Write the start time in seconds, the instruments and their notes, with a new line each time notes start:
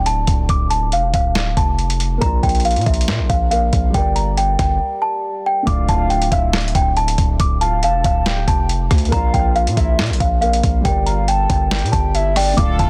Already playing: 808-style bass D1, grand piano D3 A3 F4 D5
0.06 celesta A5, closed hi-hat
0.27 808-style bass D1, kick, closed hi-hat
0.49 808-style bass D1, celesta D6, kick, closed hi-hat
0.70 celesta A5, closed hi-hat
0.92 808-style bass E1, celesta F5, closed hi-hat
1.14 808-style bass D1, celesta F5, kick, closed hi-hat
1.35 snare, clap, closed hi-hat
1.57 808-style bass F1, celesta A5, kick, closed hi-hat
1.79 closed hi-hat
1.90 closed hi-hat
2.00 closed hi-hat
2.18 808-style bass A#1, grand piano A#3 A#4, celesta A#5, kick, closed hi-hat
2.23 grand piano F4 D5
2.43 808-style bass A#1, celesta G5, kick, closed hi-hat
2.49 closed hi-hat
2.55 closed hi-hat
2.60 closed hi-hat
2.65 celesta F5, closed hi-hat
2.71 closed hi-hat
2.76 808-style bass A#2, closed hi-hat
2.81 closed hi-hat
2.86 808-style bass A#1, celesta E5, kick, closed hi-hat
2.94 closed hi-hat
3.01 closed hi-hat
3.08 808-style bass A#2, snare, clap, closed hi-hat
3.19 808-style bass A#1
3.30 808-style bass A#1, celesta F5, kick, closed hi-hat
3.50 grand piano A#3 A#4 D5, celesta F5, closed hi-hat
3.54 grand piano F5
3.73 808-style bass A#1, kick, closed hi-hat
3.90 grand piano G3 G4
3.94 808-style bass G1, grand piano A#4 D5, celesta G5, kick, closed hi-hat
4.16 celesta A#5, closed hi-hat
4.37 celesta G5, closed hi-hat
4.59 808-style bass G1, celesta G5, kick, cross-stick, closed hi-hat
5.02 celesta A5
5.46 celesta G5
5.63 grand piano D3 A3
5.67 808-style bass D1, grand piano F4 D5, soft synth lead F5, celesta D6, kick, closed hi-hat
5.89 808-style bass D1, celesta A5, kick, closed hi-hat
6.10 celesta G5, closed hi-hat
6.22 closed hi-hat
6.32 808-style bass D1, soft synth lead E5, celesta F5, kick, closed hi-hat
6.53 snare, clap, closed hi-hat
6.61 closed hi-hat
6.68 closed hi-hat
6.75 808-style bass D1, celesta G5, kick, closed hi-hat
6.97 celesta A5, closed hi-hat
7.08 closed hi-hat
7.18 808-style bass D1, kick, closed hi-hat
7.40 808-style bass D1, celesta D6, kick, closed hi-hat
7.61 soft synth lead F5, celesta A5, closed hi-hat
7.83 808-style bass E1, celesta F5, soft synth lead A5, closed hi-hat
8.04 808-style bass D1, celesta F5, kick, closed hi-hat
8.26 soft synth lead G5, snare, clap, closed hi-hat
8.48 808-style bass F1, celesta A5, kick, closed hi-hat
8.69 closed hi-hat
8.91 808-style bass D2, kick, cross-stick, closed hi-hat
8.98 closed hi-hat
9.05 grand piano A#3, closed hi-hat
9.11 808-style bass A#1, grand piano A#4 D5, soft synth lead F5, celesta A#5, kick, closed hi-hat
9.16 grand piano F4
9.34 808-style bass A#1, celesta G5, kick, closed hi-hat
9.56 celesta F5, closed hi-hat
9.67 808-style bass A#2, closed hi-hat
9.77 808-style bass A#1, celesta E5, soft synth lead E5, kick, closed hi-hat
9.99 808-style bass A#2, snare, clap, closed hi-hat
10.06 closed hi-hat
10.10 808-style bass A#1, closed hi-hat
10.20 808-style bass A#1, celesta F5, kick, closed hi-hat
10.40 grand piano A#3 A#4 D5 F5, celesta F5, closed hi-hat
10.53 closed hi-hat
10.63 808-style bass A#1, kick, closed hi-hat
10.81 grand piano G3 G4, celesta G5
10.85 808-style bass G1, grand piano A#4 D5, kick, closed hi-hat
11.06 soft synth lead F5, celesta A#5, closed hi-hat
11.28 celesta G5, soft synth lead A5, closed hi-hat
11.50 808-style bass G1, celesta G5, kick, closed hi-hat
11.71 soft synth lead G5, snare, clap, closed hi-hat
11.79 closed hi-hat
11.83 808-style bass A#2, closed hi-hat
11.92 808-style bass G1, celesta A5, kick, closed hi-hat
12.14 soft synth lead E5, closed hi-hat
12.36 soft synth lead D5, celesta G5, cross-stick, open hi-hat
12.53 grand piano D3 A3, celesta D6
12.58 808-style bass D1, string section D3 D4 F4 A4, grand piano F4 D5, soft synth lead F5, kick, closed hi-hat
12.79 808-style bass D1, celesta A5, kick, closed hi-hat